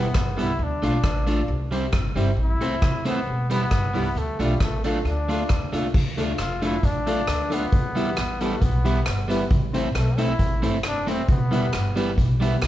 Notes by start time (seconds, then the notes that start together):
0.00 B3
0.14 G1 G4 B4, kick, cross-stick, clap
0.37 C2 G3 B3 E4 G4 B4, closed hi-hat
0.42 E4
0.59 D2
0.63 D4
0.82 B1 A3 D4 F4 A4 D5, closed hi-hat
1.04 A1 A4 D5, kick, cross-stick, clap
1.27 A3 D4 F4 A4 D5, closed hi-hat
1.48 C2 G4 C5
1.71 G3 C4 E4 G4 C5, closed hi-hat
1.93 G1 G4 C5, kick, cross-stick, clap
2.16 G1 G3 C4 E4 G4 C5, closed hi-hat
2.37 A1
2.41 E4
2.61 C2 A3 C4 E4 A4 C5, closed hi-hat
2.82 E2 A4 C5, kick, cross-stick, clap
3.05 A3 B3 C4 E4 A4 C5, closed hi-hat
3.27 E1 G4 B4
3.50 G3 B3 E4 G4 B4, closed hi-hat
3.71 G1 G4 B4, kick, cross-stick, clap
3.94 C2 G3 B3 E4 G4 B4, open hi-hat
4.15 D2 A3, hi-hat pedal
4.39 B1 G3 A3 D4 F4 A4, closed hi-hat
4.60 A1 A3, kick, cross-stick, clap
4.84 A3 D4 F4 A4, closed hi-hat
5.05 D2 D4 F4 A4, cross-stick
5.29 A3 D4 F4 A4, closed hi-hat
5.49 D2 F4 A4, kick, cross-stick, clap
5.73 C2 A3 D4 F4 A4, closed hi-hat
5.94 D2, kick, crash
6.17 A3 D4 F4 A4, closed hi-hat
6.38 F1 F4, cross-stick, clap, closed hi-hat
6.62 A3 D4 E4 F4 A4, closed hi-hat
6.83 A1 D4, kick, closed hi-hat
7.06 A3 D4 F4 A4, closed hi-hat
7.27 D2 F4 A4, cross-stick, clap, closed hi-hat
7.50 A3 B3 D4 F4 A4, closed hi-hat
7.72 E2, kick, closed hi-hat
7.95 G3 B3 E4 G4 B4, closed hi-hat
8.16 A1, cross-stick, clap, closed hi-hat
8.41 G3 A3 B3 E4 G4 B4, closed hi-hat
8.62 B1 B3, kick, closed hi-hat
8.84 G3 B3 E4 G4 B4, closed hi-hat
9.06 G1, cross-stick, clap, closed hi-hat
9.28 G3 B3 E4 G4 B4, closed hi-hat
9.50 A1, kick, closed hi-hat
9.73 A3 C4 E4 A4 C5, closed hi-hat
9.95 B1 A3, cross-stick, clap, closed hi-hat
10.18 A3 C4 E4 A4 C5, closed hi-hat
10.39 A1, kick, closed hi-hat
10.62 G1 A3 C4 E4 A4 C5, closed hi-hat
10.83 F1 D4 A4 C5, cross-stick, clap, closed hi-hat
11.06 A3 C4 E4 A4 C5, closed hi-hat
11.28 E1 B3, kick, closed hi-hat
11.51 G3 B3 E4 G4 B4, closed hi-hat
11.73 G1, cross-stick, clap, closed hi-hat
11.96 G3 B3 E4 G4 B4, closed hi-hat
12.18 B1, kick, closed hi-hat
12.40 G3 B3 E4 G4 B4, closed hi-hat
12.62 C2 E4 G4 B4, cross-stick, clap, closed hi-hat